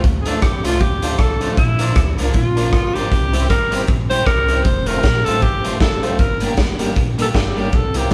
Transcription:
0.04 upright bass D2, kick, closed hi-hat
0.22 tonewheel organ D4, alto saxophone G#4, closed hi-hat
0.26 clean electric guitar F3 A3 D4 F4, tonewheel organ F4 A4 D5, alto saxophone A4
0.42 upright bass F2, alto saxophone G4, kick, cross-stick, closed hi-hat
0.63 upright bass C2, clean electric guitar F3 A3 D4 F4, tonewheel organ D4 F4 A4 D5, alto saxophone F4, closed hi-hat
0.80 upright bass D2, alto saxophone G4, kick, closed hi-hat
1.02 clean electric guitar F3 A3 D4 F4, tonewheel organ D4 F4 A4 D5, closed hi-hat
1.19 upright bass C2, tonewheel organ A4 D5, alto saxophone A4, kick, cross-stick, closed hi-hat
1.40 clean electric guitar F3 A3 D4 F4, tonewheel organ D4 F4 A4 D5, closed hi-hat
1.57 upright bass A#1, alto saxophone E4, kick, closed hi-hat
1.78 clean electric guitar F3 A#3 D4 F4, tonewheel organ D4 F4 A#4 D5, closed hi-hat
1.95 upright bass D2, kick, cross-stick, closed hi-hat
2.17 upright bass C2, clean electric guitar F3 A#3, tonewheel organ D4 F4 A#4 D5, closed hi-hat
2.21 clean electric guitar D4 F4
2.33 upright bass A#1, alto saxophone F4, kick, closed hi-hat
2.56 clean electric guitar F3 A#3 D4 F4, tonewheel organ D4 F4 A#4 D5, closed hi-hat
2.73 upright bass G1, kick, cross-stick, closed hi-hat
2.94 clean electric guitar F3 A#3 D4 F4, tonewheel organ D4 F4 A#4 D5, alto saxophone G4, closed hi-hat
3.12 upright bass C2, kick, closed hi-hat
3.33 clean electric guitar G3 C4 E4 G4, tonewheel organ C4 E4 G4 C5, closed hi-hat
3.50 upright bass G1, alto saxophone A#4, kick, cross-stick, closed hi-hat
3.71 clean electric guitar G3 C4 E4 G4, tonewheel organ C4 E4 G4 C5, closed hi-hat
3.87 upright bass A#1, kick, closed hi-hat
4.10 clean electric guitar G3 C4 E4 G4, tonewheel organ C4 E4 G4 C5, alto saxophone C5, closed hi-hat
4.26 upright bass C2, alto saxophone A#4, kick, cross-stick, closed hi-hat
4.48 clean electric guitar G3 C4 E4 G4, tonewheel organ C4 E4 G4 C5, closed hi-hat
4.64 upright bass F1, alto saxophone C5, kick, closed hi-hat
4.86 clean electric guitar F3 A3 C4 F4, tonewheel organ C4 F4 A4 C5, alto saxophone A#4, closed hi-hat
5.03 upright bass A#1, kick, snare, closed hi-hat
5.25 upright bass A1, clean electric guitar F3 A3 C4 F4, tonewheel organ C4 F4 A4 C5, alto saxophone A4, closed hi-hat
5.42 upright bass G1, alto saxophone G4, kick, closed hi-hat
5.63 clean electric guitar F3 A3 C4 F4, tonewheel organ C4 F4 A4 C5, closed hi-hat
5.80 upright bass F1, alto saxophone A4, kick, snare, closed hi-hat
6.02 upright bass C2, clean electric guitar F3 A3 C4 F4, tonewheel organ C4 F4 A4 C5, closed hi-hat
6.19 upright bass G1, alto saxophone A#4, kick, closed hi-hat
6.40 clean electric guitar G3 A#3 D4 G4, tonewheel organ A#3 D4 G4 A#4, closed hi-hat
6.57 upright bass F1, kick, snare, closed hi-hat
6.79 upright bass G1, clean electric guitar G3 A#3 D4 G4, tonewheel organ A#3 D4 G4 A#4, closed hi-hat
6.96 upright bass A#1, kick, closed hi-hat
7.18 clean electric guitar G3 A#3 D4 G4, tonewheel organ A#3 D4 G4 A#4, alto saxophone A4, closed hi-hat
7.34 upright bass G1, alto saxophone G4, tonewheel organ A#4, muted clean electric guitar stroke, kick, snare, closed hi-hat
7.55 clean electric guitar G3 A#3 D4 G4, tonewheel organ A#3 D4 G4 A#4, open hi-hat
7.72 upright bass C2, alto saxophone A4, kick, closed hi-hat
7.94 clean electric guitar E3 A#3 C4 G4, tonewheel organ C4 E4 G4 A#4, alto saxophone G4, closed hi-hat
8.11 closed hi-hat

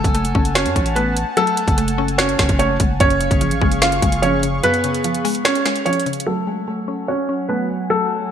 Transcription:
Already playing: synth pluck F#3 G#3, felt piano A3 A4, analog synth pad F#5 G#5 A5
0.04 808-style bass F#1, kick, closed hi-hat
0.15 synth pluck A3, closed hi-hat
0.25 closed hi-hat
0.35 808-style bass F#1, synth pluck C#4, kick
0.45 closed hi-hat
0.55 felt piano C#4 C#5, synth pluck F#4, finger snap, snare, closed hi-hat
0.66 808-style bass F#2, closed hi-hat
0.76 808-style bass A1, synth pluck C#4, kick, closed hi-hat
0.86 closed hi-hat
0.95 synth pluck A3, felt piano B3 B4, closed hi-hat
1.17 closed hi-hat
1.37 synth pluck F#3, felt piano A3 A4, closed hi-hat
1.47 closed hi-hat
1.57 closed hi-hat
1.68 808-style bass F#1, kick, closed hi-hat
1.78 synth pluck A3, closed hi-hat
1.88 closed hi-hat
1.98 synth pluck C#4
2.08 closed hi-hat
2.18 felt piano C#4 C#5, synth pluck F#4, finger snap, snare, closed hi-hat
2.29 closed hi-hat
2.39 808-style bass F#1, synth pluck C#4, finger snap, kick, snare, closed hi-hat
2.49 808-style bass F#1, kick, closed hi-hat
2.59 synth pluck A3, felt piano C#4 C#5, closed hi-hat
2.80 808-style bass F#1, synth pluck G#3, kick, closed hi-hat
3.00 808-style bass F#1, synth pluck F#2, felt piano C#4 C#5, analog synth pad G#4 F5 C#6, kick, closed hi-hat
3.10 closed hi-hat
3.21 synth pluck C#3, closed hi-hat
3.31 808-style bass F#1, kick, closed hi-hat
3.41 synth pluck F3, closed hi-hat
3.51 808-style bass A1, closed hi-hat
3.61 808-style bass F#1, synth pluck G#3, kick
3.72 closed hi-hat
3.82 synth pluck C#4, felt piano F4 F5, finger snap, snare, closed hi-hat
3.92 closed hi-hat
4.02 808-style bass F#1, synth pluck G#3, kick, closed hi-hat
4.12 closed hi-hat
4.22 synth pluck F3, felt piano C#4 C#5, closed hi-hat
4.43 synth pluck C#3, closed hi-hat
4.63 synth pluck F#2, felt piano B3 B4, closed hi-hat
4.74 closed hi-hat
4.84 synth pluck C#3, closed hi-hat
4.95 closed hi-hat
5.04 synth pluck F3, closed hi-hat
5.14 closed hi-hat
5.25 synth pluck G#3, open hi-hat
5.35 closed hi-hat
5.45 synth pluck C#4, felt piano C#4 C#5, finger snap, snare, closed hi-hat
5.55 closed hi-hat
5.66 synth pluck G#3, finger snap, snare, closed hi-hat
5.76 closed hi-hat
5.86 synth pluck F3, felt piano C#4 C#5, closed hi-hat
5.93 closed hi-hat
6.00 closed hi-hat
6.06 synth pluck C#3, closed hi-hat
6.13 closed hi-hat
6.20 closed hi-hat
6.27 analog synth pad F#3 F#5 G#5, synth pluck F#3, felt piano A3 A4
6.47 synth pluck G#3
6.68 synth pluck A3
6.88 synth pluck C#4
7.08 felt piano C#4 C#5, synth pluck F#4
7.29 synth pluck C#4
7.49 synth pluck A3, felt piano B3 B4
7.90 synth pluck F#3, felt piano A3 A4

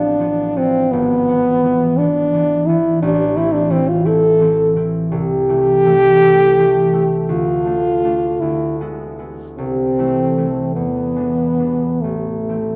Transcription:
Already playing: harp A1 F3 A3 B3, french horn D4
0.20 harp F3 B3
0.56 harp F3 B3, french horn C4
0.91 harp G#1, french horn B3
1.28 harp E3 B3
1.64 harp E3 B3
1.98 harp E3 B3, french horn D4
2.33 harp E3 B3
2.66 harp E3 B3, french horn E4
3.02 harp A1, french horn D4
3.36 harp E3 C4 E4, french horn E4
3.53 french horn D4
3.70 harp E3 C4 E4, french horn C4
3.89 french horn F4
4.05 harp E3 C4 E4, french horn A4
4.39 harp E3 C4
4.44 harp E4
4.76 harp E3 C4 E4
5.12 harp C2, french horn G4
5.49 harp E3 A3 E4
5.86 harp E3 A3 E4
6.22 harp E3 A3 E4
6.58 harp E3 A3 E4
6.93 harp E3 A3 E4
7.29 harp D2, french horn F4
7.66 harp A3 D4
8.05 harp A3 D4
8.41 harp D2, french horn E4
8.81 harp G#3 B3 E4
9.19 harp G#3 B3 E4
9.58 harp C2, french horn C4
9.98 harp E3 A3 E4
10.37 harp E3 A3 E4
10.75 harp E2, french horn B3
11.16 harp E3 G#3 D4
11.59 harp E3 G#3 D4
12.02 harp A1, french horn A3
12.49 harp E3 A3 C4

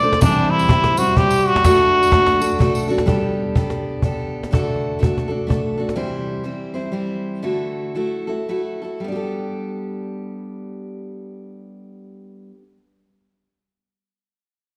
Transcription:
Already playing: trombone D5
0.02 steel-string acoustic guitar D4 A4 C5
0.13 cajon slap
0.21 steel-string acoustic guitar C3 E3 G3 C4 E4 C5, trombone D4, cajon bass, tambourine
0.51 trombone E4, cajon slap
0.59 cajon slap, tambourine
0.68 steel-string acoustic guitar G3 C4 E4 C5, cajon bass
0.83 cajon slap, tambourine
0.97 steel-string acoustic guitar G3 C4 E4 C5, trombone F#4, tambourine
1.07 tambourine
1.16 steel-string acoustic guitar G3 C4 E4 C5, trombone G4, cajon bass
1.31 cajon slap, tambourine
1.47 trombone F#4
1.56 cajon slap
1.64 steel-string acoustic guitar D3 A3 D4 F#4 A4, cajon bass, cajon slap, tambourine
1.79 cajon slap
1.95 cajon slap
2.03 cajon slap, tambourine
2.11 steel-string acoustic guitar A3 D4 F#4 A4, cajon bass, cajon slap
2.26 cajon slap, tambourine
2.40 steel-string acoustic guitar D4 F#4 A4, tambourine
2.59 steel-string acoustic guitar A3 D4 F#4 A4, cajon bass, tambourine
2.75 tambourine
2.88 steel-string acoustic guitar D4 F#4 A4, tambourine
2.98 cajon slap
3.06 steel-string acoustic guitar G3 B3 D4 G4 A4, cajon bass
3.23 cajon slap
3.38 cajon slap
3.55 steel-string acoustic guitar B3 D4 G4 A4, cajon bass
3.70 cajon slap
4.02 steel-string acoustic guitar B3 D4 G4 A4, cajon bass
4.18 cajon slap
4.43 cajon slap
4.51 steel-string acoustic guitar D3 A3 D4 F#4 A4, cajon bass
4.69 cajon slap
4.84 cajon slap
4.99 steel-string acoustic guitar A3 D4 F#4 A4
5.03 cajon bass
5.18 cajon slap
5.28 steel-string acoustic guitar D4 F#4 A4
5.47 steel-string acoustic guitar A3 D4 F#4 A4, cajon bass
5.64 cajon slap
5.77 steel-string acoustic guitar D4 F#4 A4
5.89 cajon slap
5.95 steel-string acoustic guitar C3 E3 G3 C4 E4 C5
6.44 steel-string acoustic guitar G3 C4 E4 C5
6.74 steel-string acoustic guitar G3 C4 E4 C5
6.92 steel-string acoustic guitar G3 C4 E4 C5
7.42 steel-string acoustic guitar D3 A3 E4 F#4 A4
7.95 steel-string acoustic guitar A3 E4 F#4 A4
8.27 steel-string acoustic guitar E4 F#4 A4
8.49 steel-string acoustic guitar A3 E4 F#4 A4
8.82 steel-string acoustic guitar E4 F#4 A4
9.00 steel-string acoustic guitar G3
9.04 steel-string acoustic guitar B3
9.08 steel-string acoustic guitar D4 G4
9.15 steel-string acoustic guitar A4

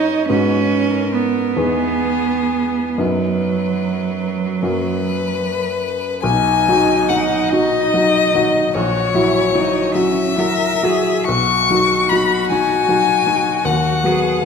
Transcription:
Already playing: grand piano G2 C#4 D#4 A#4, cello D#4, violin C#5
0.28 grand piano G#2 B3 D#4 F#4, cello C#4, violin B4
0.91 violin A#4
1.14 cello B3
1.57 grand piano E2 B3 D#4 G#4, violin G#4
2.98 grand piano F#2 B3 D#4 F#4, cello F#3, violin B4
4.62 grand piano F#2 A#3 C#4 F#4, violin B4
6.23 grand piano B1, cello D#4, violin G#5
6.68 grand piano F#3 D#4 F#4
7.09 grand piano F#3 D#4 F#4, violin F#5
7.49 grand piano F#3 D#4 F#4, violin D#5
7.94 grand piano F#3 D#4 F#4
8.35 grand piano F#3 D#4 F#4
8.74 grand piano A#1, cello F#4, violin C#5
9.14 grand piano F#3 E4 F#4, cello E4
9.55 grand piano F#3 E4 F#4, cello D#4
9.94 grand piano F#3 E4 F#4, cello C#4, violin E5
10.38 grand piano F#3 E4 F#4, cello A#4
10.83 grand piano F#3 E4 F#4, cello G#4
11.27 grand piano B1, cello F#4, violin C#6
11.70 grand piano F#3 D#4 F#4
12.10 grand piano F#3 D#4 F#4, violin B5
12.50 grand piano F#3 D#4 F#4, violin G#5
12.88 grand piano F#3 D#4 F#4
13.26 grand piano F#3 D#4 F#4
13.65 grand piano D#2, cello F#4, violin F#5
14.04 grand piano F#3 B3 F#4, cello G#4

